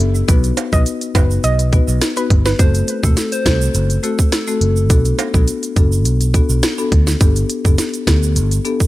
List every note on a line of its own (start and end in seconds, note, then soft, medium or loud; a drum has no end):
0.00 0.22 F#1 medium
0.00 0.12 E5 medium
0.00 closed hi-hat medium
0.15 shaker medium
0.28 0.50 B1 loud
0.28 0.50 B3 medium
0.28 0.50 D#4 medium
0.28 0.51 F#4 medium
0.28 0.51 B4 loud
0.28 kick loud
0.28 closed hi-hat medium
0.28 shaker medium
0.44 closed hi-hat medium
0.44 shaker medium
0.57 closed hi-hat medium
0.57 high timbale medium
0.57 shaker medium
0.72 0.83 B1 medium
0.72 1.12 B3 medium
0.72 1.12 D#4 medium
0.72 1.12 F#4 medium
0.72 1.12 B4 medium
0.72 0.83 D#5 medium
0.72 kick medium
0.72 shaker medium
0.86 closed hi-hat medium
0.86 shaker medium
1.01 closed hi-hat medium
1.01 shaker medium
1.15 1.37 F#1 medium
1.15 1.42 B3 medium
1.15 1.42 D#4 medium
1.15 1.42 F#4 medium
1.15 1.26 B4 medium
1.15 1.42 B4 medium
1.15 kick medium
1.15 closed hi-hat medium
1.15 high timbale medium
1.15 shaker medium
1.31 shaker medium
1.44 1.77 B1 loud
1.44 1.85 D#5 loud
1.44 closed hi-hat medium
1.44 shaker medium
1.59 closed hi-hat medium
1.59 shaker medium
1.72 1.95 B3 medium
1.72 1.95 D#4 medium
1.72 1.95 F#4 medium
1.72 1.95 B4 medium
1.72 kick medium
1.72 closed hi-hat medium
1.72 shaker medium
1.88 1.98 B1 medium
1.88 shaker medium
2.01 cross-stick medium
2.01 snare loud
2.01 closed hi-hat medium
2.01 shaker medium
2.17 2.38 B3 medium
2.17 2.38 D#4 medium
2.17 2.38 F#4 medium
2.17 2.27 B4 medium
2.17 2.38 B4 medium
2.17 closed hi-hat medium
2.17 shaker medium
2.30 2.52 G1 loud
2.30 kick loud
2.30 closed hi-hat medium
2.46 2.56 B4 medium
2.46 snare medium
2.46 shaker medium
2.59 2.81 F#1 loud
2.59 2.81 A3 medium
2.59 2.81 C4 medium
2.59 2.81 F#4 medium
2.59 2.81 A4 loud
2.59 3.05 C5 loud
2.59 kick loud
2.59 closed hi-hat medium
2.59 shaker medium
2.74 closed hi-hat medium
2.74 shaker medium
2.88 closed hi-hat medium
2.88 shaker medium
3.03 3.14 E1 medium
3.03 3.42 A3 medium
3.03 3.43 C4 medium
3.03 3.43 F#4 medium
3.03 3.32 A4 loud
3.03 3.43 A4 medium
3.03 kick loud
3.03 shaker medium
3.17 snare medium
3.17 closed hi-hat medium
3.17 shaker medium
3.32 4.05 C5 loud
3.32 closed hi-hat medium
3.32 shaker medium
3.45 3.68 C2 medium
3.45 3.72 A3 medium
3.45 3.72 C4 medium
3.45 3.73 F#4 medium
3.45 3.73 A4 medium
3.45 kick medium
3.45 cross-stick medium
3.45 snare loud
3.45 closed hi-hat medium
3.45 shaker medium
3.61 shaker medium
3.74 3.97 F#1 loud
3.74 closed hi-hat medium
3.74 shaker medium
3.90 closed hi-hat medium
3.90 shaker medium
4.03 4.25 A3 medium
4.03 4.25 C4 medium
4.03 4.26 F#4 medium
4.03 4.32 A4 medium
4.03 4.26 A4 medium
4.03 closed hi-hat medium
4.03 shaker medium
4.19 kick medium
4.19 shaker medium
4.32 5.44 A4 medium
4.32 cross-stick medium
4.32 snare loud
4.32 closed hi-hat medium
4.32 shaker medium
4.47 4.69 A3 medium
4.47 4.69 C4 medium
4.47 4.69 F#4 medium
4.47 4.69 A4 medium
4.47 shaker medium
4.61 4.90 F#1 medium
4.61 closed hi-hat medium
4.76 shaker medium
4.90 5.12 B1 loud
4.90 5.12 B3 medium
4.90 5.12 D4 medium
4.90 5.12 F#4 medium
4.90 5.12 A4 loud
4.90 kick loud
4.90 closed hi-hat medium
4.90 shaker medium
5.05 closed hi-hat medium
5.05 shaker medium
5.19 closed hi-hat medium
5.19 high timbale medium
5.19 shaker medium
5.34 5.44 B1 medium
5.34 5.73 B3 medium
5.34 5.73 D4 medium
5.34 5.73 F#4 medium
5.34 5.73 A4 medium
5.34 kick medium
5.34 shaker medium
5.48 closed hi-hat medium
5.48 shaker medium
5.63 closed hi-hat medium
5.63 shaker medium
5.76 6.05 F#1 loud
5.76 6.03 B3 medium
5.76 6.03 D4 medium
5.76 6.03 F#4 medium
5.76 6.03 A4 medium
5.76 kick medium
5.76 closed hi-hat medium
5.76 shaker medium
5.92 shaker medium
6.05 6.39 B1 loud
6.05 closed hi-hat medium
6.05 shaker medium
6.21 closed hi-hat medium
6.21 shaker medium
6.34 6.56 B3 medium
6.34 6.56 D4 medium
6.34 6.56 F#4 medium
6.34 6.56 A4 medium
6.34 kick medium
6.34 closed hi-hat medium
6.34 shaker medium
6.49 6.60 B1 medium
6.49 shaker medium
6.63 cross-stick medium
6.63 snare loud
6.63 closed hi-hat medium
6.63 shaker medium
6.78 6.99 B3 medium
6.78 6.99 D4 medium
6.78 7.00 F#4 medium
6.78 7.00 A4 medium
6.78 shaker medium
6.92 7.14 D2 medium
6.92 kick loud
6.92 closed hi-hat medium
7.07 snare medium
7.07 shaker medium
7.21 7.43 G1 loud
7.21 7.43 B3 loud
7.21 7.43 D4 medium
7.21 7.43 G4 medium
7.21 7.43 A4 loud
7.21 kick loud
7.21 closed hi-hat medium
7.21 shaker medium
7.36 closed hi-hat medium
7.36 shaker medium
7.49 closed hi-hat medium
7.49 shaker medium
7.65 7.75 F#1 medium
7.65 8.04 B3 medium
7.65 8.04 D4 medium
7.65 8.04 G4 medium
7.65 8.04 A4 medium
7.65 kick medium
7.65 shaker medium
7.78 snare medium
7.78 closed hi-hat medium
7.78 shaker medium
7.94 closed hi-hat medium
7.94 shaker medium
8.07 8.38 D2 medium
8.07 8.34 B3 medium
8.07 8.34 D4 medium
8.07 8.34 G4 medium
8.07 8.34 A4 medium
8.07 kick medium
8.07 cross-stick medium
8.07 snare loud
8.07 closed hi-hat medium
8.07 shaker medium
8.23 shaker medium
8.36 8.58 G1 loud
8.36 closed hi-hat medium
8.36 shaker medium
8.51 closed hi-hat medium
8.51 shaker medium
8.65 8.87 B3 medium
8.65 8.87 D4 medium
8.65 8.87 G4 medium
8.65 8.87 A4 medium
8.65 closed hi-hat medium
8.65 shaker medium
8.80 kick medium
8.80 shaker medium